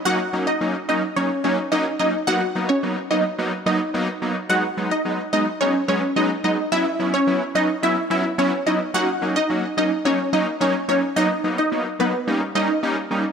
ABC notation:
X:1
M:4/4
L:1/16
Q:1/4=108
K:D#phr
V:1 name="Synth pluck"
[Ff]2 z [Dd]2 z [Dd] z [Cc]2 [Cc] z [Dd] z [Dd] z | [Ff]2 z [Cc]2 z [Dd] z3 [Dd]2 z4 | [Ff]2 z [Dd]2 z [Dd] z [Cc]2 [Cc] z [Dd] z [Dd] z | [Ee]2 z [Cc]2 z [Dd] z [Ee]2 [Ee] z [Cc] z [Dd] z |
[Ff]2 z [Dd]2 z [Dd] z [Cc]2 [Dd] z [Cc] z [Cc] z | [Dd]2 z [Dd]2 z [B,B] z3 [Dd]2 z4 |]
V:2 name="Analog polysynth"
[F,A,CD] z [F,A,CD] z [F,A,CD] z [F,A,CD] z [F,A,CD] z [F,A,CD] z [F,A,CD] z [F,A,CD] z | [F,A,B,D] z [F,A,B,D] z [F,A,B,D] z [F,A,B,D] z [F,A,B,D] z [F,A,B,D] z [F,A,B,D] z [F,A,B,D] z | [F,G,B,D] z [F,G,B,D] z [F,G,B,D] z [F,G,B,D] z [F,G,B,D] z [F,G,B,C] z [F,G,B,D] z [F,G,B,D] z | [F,B,CE] z [F,B,CE] z [F,B,CE] z [F,B,CD] z [F,B,CE] z [F,B,CE] z [F,B,CE] z [F,B,CE] z |
[F,A,CD] z [F,A,CD] z [F,A,CF] z [F,A,CD] z [F,A,CD] z [F,A,CD] z [F,A,CD] z [F,A,CD] z | [F,A,B,D] z [F,A,B,D] z [F,A,B,D] z [F,A,B,D] z [=G,A,CD] z [G,A,CD] z [G,A,CD] z [G,A,CD] z |]